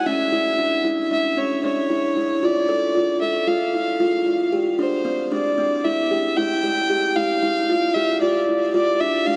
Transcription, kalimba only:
0, 0, Header, 1, 2, 480
1, 0, Start_track
1, 0, Tempo, 526316
1, 58, Time_signature, 9, 3, 24, 8
1, 8540, End_track
2, 0, Start_track
2, 0, Title_t, "Kalimba"
2, 0, Program_c, 0, 108
2, 59, Note_on_c, 0, 61, 82
2, 255, Note_off_c, 0, 61, 0
2, 296, Note_on_c, 0, 64, 77
2, 493, Note_off_c, 0, 64, 0
2, 534, Note_on_c, 0, 62, 63
2, 732, Note_off_c, 0, 62, 0
2, 773, Note_on_c, 0, 64, 64
2, 971, Note_off_c, 0, 64, 0
2, 1010, Note_on_c, 0, 62, 63
2, 1209, Note_off_c, 0, 62, 0
2, 1251, Note_on_c, 0, 61, 65
2, 1449, Note_off_c, 0, 61, 0
2, 1494, Note_on_c, 0, 62, 72
2, 1691, Note_off_c, 0, 62, 0
2, 1732, Note_on_c, 0, 64, 65
2, 1930, Note_off_c, 0, 64, 0
2, 1975, Note_on_c, 0, 64, 67
2, 2171, Note_off_c, 0, 64, 0
2, 2215, Note_on_c, 0, 65, 68
2, 2411, Note_off_c, 0, 65, 0
2, 2452, Note_on_c, 0, 69, 65
2, 2649, Note_off_c, 0, 69, 0
2, 2691, Note_on_c, 0, 65, 65
2, 2889, Note_off_c, 0, 65, 0
2, 2935, Note_on_c, 0, 69, 55
2, 3131, Note_off_c, 0, 69, 0
2, 3168, Note_on_c, 0, 65, 77
2, 3367, Note_off_c, 0, 65, 0
2, 3414, Note_on_c, 0, 64, 54
2, 3610, Note_off_c, 0, 64, 0
2, 3647, Note_on_c, 0, 65, 69
2, 3846, Note_off_c, 0, 65, 0
2, 3886, Note_on_c, 0, 65, 57
2, 4086, Note_off_c, 0, 65, 0
2, 4127, Note_on_c, 0, 67, 65
2, 4326, Note_off_c, 0, 67, 0
2, 4366, Note_on_c, 0, 62, 75
2, 4566, Note_off_c, 0, 62, 0
2, 4604, Note_on_c, 0, 60, 73
2, 4804, Note_off_c, 0, 60, 0
2, 4848, Note_on_c, 0, 62, 80
2, 5047, Note_off_c, 0, 62, 0
2, 5087, Note_on_c, 0, 60, 69
2, 5286, Note_off_c, 0, 60, 0
2, 5331, Note_on_c, 0, 64, 71
2, 5529, Note_off_c, 0, 64, 0
2, 5572, Note_on_c, 0, 67, 64
2, 5770, Note_off_c, 0, 67, 0
2, 5813, Note_on_c, 0, 64, 79
2, 6010, Note_off_c, 0, 64, 0
2, 6050, Note_on_c, 0, 67, 63
2, 6249, Note_off_c, 0, 67, 0
2, 6291, Note_on_c, 0, 67, 74
2, 6490, Note_off_c, 0, 67, 0
2, 6532, Note_on_c, 0, 64, 77
2, 6731, Note_off_c, 0, 64, 0
2, 6772, Note_on_c, 0, 64, 77
2, 6971, Note_off_c, 0, 64, 0
2, 7018, Note_on_c, 0, 65, 74
2, 7214, Note_off_c, 0, 65, 0
2, 7257, Note_on_c, 0, 67, 72
2, 7454, Note_off_c, 0, 67, 0
2, 7494, Note_on_c, 0, 65, 75
2, 7692, Note_off_c, 0, 65, 0
2, 7738, Note_on_c, 0, 64, 66
2, 7935, Note_off_c, 0, 64, 0
2, 7972, Note_on_c, 0, 65, 80
2, 8172, Note_off_c, 0, 65, 0
2, 8215, Note_on_c, 0, 62, 62
2, 8414, Note_off_c, 0, 62, 0
2, 8456, Note_on_c, 0, 62, 75
2, 8540, Note_off_c, 0, 62, 0
2, 8540, End_track
0, 0, End_of_file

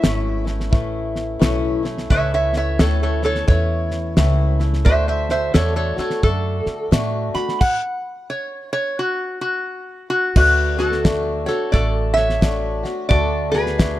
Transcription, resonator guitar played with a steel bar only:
0, 0, Header, 1, 2, 480
1, 0, Start_track
1, 0, Tempo, 688073
1, 1464, Time_signature, 4, 2, 24, 8
1, 9763, End_track
2, 0, Start_track
2, 0, Title_t, "Resonator guitar played with a steel bar"
2, 0, Program_c, 0, 25
2, 0, Note_on_c, 0, 76, 100
2, 328, Note_off_c, 0, 76, 0
2, 1466, Note_on_c, 0, 73, 93
2, 1475, Note_on_c, 0, 76, 104
2, 1624, Note_off_c, 0, 73, 0
2, 1625, Note_off_c, 0, 76, 0
2, 1632, Note_on_c, 0, 73, 78
2, 1637, Note_on_c, 0, 76, 87
2, 1778, Note_off_c, 0, 73, 0
2, 1786, Note_off_c, 0, 76, 0
2, 1793, Note_on_c, 0, 73, 83
2, 1796, Note_on_c, 0, 76, 90
2, 1939, Note_off_c, 0, 73, 0
2, 1945, Note_off_c, 0, 76, 0
2, 1953, Note_on_c, 0, 69, 79
2, 1957, Note_on_c, 0, 73, 94
2, 2098, Note_off_c, 0, 69, 0
2, 2107, Note_off_c, 0, 73, 0
2, 2113, Note_on_c, 0, 69, 74
2, 2116, Note_on_c, 0, 73, 83
2, 2256, Note_off_c, 0, 69, 0
2, 2263, Note_off_c, 0, 73, 0
2, 2264, Note_on_c, 0, 69, 78
2, 2271, Note_on_c, 0, 73, 95
2, 2414, Note_off_c, 0, 69, 0
2, 2416, Note_off_c, 0, 73, 0
2, 2425, Note_on_c, 0, 73, 93
2, 2891, Note_off_c, 0, 73, 0
2, 3382, Note_on_c, 0, 72, 87
2, 3388, Note_on_c, 0, 76, 96
2, 3535, Note_off_c, 0, 72, 0
2, 3543, Note_off_c, 0, 76, 0
2, 3544, Note_on_c, 0, 72, 80
2, 3550, Note_on_c, 0, 76, 86
2, 3694, Note_off_c, 0, 72, 0
2, 3698, Note_off_c, 0, 76, 0
2, 3702, Note_on_c, 0, 72, 87
2, 3706, Note_on_c, 0, 76, 104
2, 3853, Note_off_c, 0, 72, 0
2, 3862, Note_off_c, 0, 76, 0
2, 3863, Note_on_c, 0, 69, 80
2, 3868, Note_on_c, 0, 73, 98
2, 4010, Note_off_c, 0, 69, 0
2, 4014, Note_off_c, 0, 73, 0
2, 4019, Note_on_c, 0, 69, 76
2, 4023, Note_on_c, 0, 73, 96
2, 4171, Note_off_c, 0, 69, 0
2, 4178, Note_off_c, 0, 73, 0
2, 4179, Note_on_c, 0, 69, 72
2, 4187, Note_on_c, 0, 73, 94
2, 4332, Note_off_c, 0, 69, 0
2, 4342, Note_off_c, 0, 73, 0
2, 4350, Note_on_c, 0, 69, 107
2, 4814, Note_off_c, 0, 69, 0
2, 5125, Note_on_c, 0, 83, 99
2, 5302, Note_off_c, 0, 83, 0
2, 5307, Note_on_c, 0, 78, 105
2, 5773, Note_off_c, 0, 78, 0
2, 5789, Note_on_c, 0, 73, 90
2, 6077, Note_off_c, 0, 73, 0
2, 6088, Note_on_c, 0, 73, 113
2, 6264, Note_off_c, 0, 73, 0
2, 6272, Note_on_c, 0, 66, 98
2, 6558, Note_off_c, 0, 66, 0
2, 6567, Note_on_c, 0, 66, 102
2, 7031, Note_off_c, 0, 66, 0
2, 7045, Note_on_c, 0, 66, 106
2, 7222, Note_off_c, 0, 66, 0
2, 7235, Note_on_c, 0, 71, 96
2, 7238, Note_on_c, 0, 66, 78
2, 7509, Note_off_c, 0, 66, 0
2, 7521, Note_off_c, 0, 71, 0
2, 7524, Note_on_c, 0, 69, 88
2, 7531, Note_on_c, 0, 66, 75
2, 7979, Note_off_c, 0, 66, 0
2, 7996, Note_on_c, 0, 73, 93
2, 8003, Note_off_c, 0, 69, 0
2, 8012, Note_on_c, 0, 69, 76
2, 8176, Note_on_c, 0, 74, 95
2, 8177, Note_off_c, 0, 69, 0
2, 8187, Note_off_c, 0, 73, 0
2, 8193, Note_on_c, 0, 69, 78
2, 8464, Note_off_c, 0, 74, 0
2, 8466, Note_off_c, 0, 69, 0
2, 8466, Note_on_c, 0, 76, 127
2, 8489, Note_on_c, 0, 73, 95
2, 9119, Note_off_c, 0, 73, 0
2, 9127, Note_off_c, 0, 76, 0
2, 9130, Note_on_c, 0, 74, 109
2, 9152, Note_on_c, 0, 69, 82
2, 9413, Note_off_c, 0, 74, 0
2, 9424, Note_off_c, 0, 69, 0
2, 9428, Note_on_c, 0, 71, 98
2, 9450, Note_on_c, 0, 68, 75
2, 9763, Note_off_c, 0, 68, 0
2, 9763, Note_off_c, 0, 71, 0
2, 9763, End_track
0, 0, End_of_file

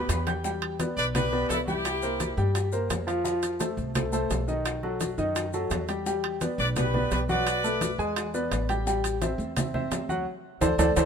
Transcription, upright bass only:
0, 0, Header, 1, 2, 480
1, 0, Start_track
1, 0, Tempo, 350877
1, 607, Time_signature, 4, 2, 24, 8
1, 15119, End_track
2, 0, Start_track
2, 0, Title_t, "Upright bass"
2, 0, Program_c, 0, 32
2, 119, Note_on_c, 0, 40, 79
2, 1246, Note_off_c, 0, 40, 0
2, 1324, Note_on_c, 0, 35, 94
2, 1997, Note_off_c, 0, 35, 0
2, 2045, Note_on_c, 0, 36, 69
2, 3170, Note_off_c, 0, 36, 0
2, 3246, Note_on_c, 0, 43, 98
2, 3918, Note_off_c, 0, 43, 0
2, 3963, Note_on_c, 0, 41, 72
2, 5089, Note_off_c, 0, 41, 0
2, 5161, Note_on_c, 0, 36, 97
2, 5835, Note_off_c, 0, 36, 0
2, 5884, Note_on_c, 0, 35, 67
2, 7009, Note_off_c, 0, 35, 0
2, 7086, Note_on_c, 0, 42, 96
2, 7758, Note_off_c, 0, 42, 0
2, 7803, Note_on_c, 0, 40, 74
2, 8928, Note_off_c, 0, 40, 0
2, 9005, Note_on_c, 0, 35, 105
2, 9677, Note_off_c, 0, 35, 0
2, 9726, Note_on_c, 0, 35, 77
2, 10848, Note_off_c, 0, 35, 0
2, 10922, Note_on_c, 0, 40, 92
2, 11594, Note_off_c, 0, 40, 0
2, 11640, Note_on_c, 0, 33, 76
2, 12764, Note_off_c, 0, 33, 0
2, 12835, Note_on_c, 0, 40, 98
2, 13509, Note_off_c, 0, 40, 0
2, 13553, Note_on_c, 0, 38, 86
2, 14005, Note_off_c, 0, 38, 0
2, 14512, Note_on_c, 0, 38, 88
2, 14696, Note_off_c, 0, 38, 0
2, 14752, Note_on_c, 0, 38, 105
2, 14935, Note_off_c, 0, 38, 0
2, 14997, Note_on_c, 0, 38, 86
2, 15119, Note_off_c, 0, 38, 0
2, 15119, End_track
0, 0, End_of_file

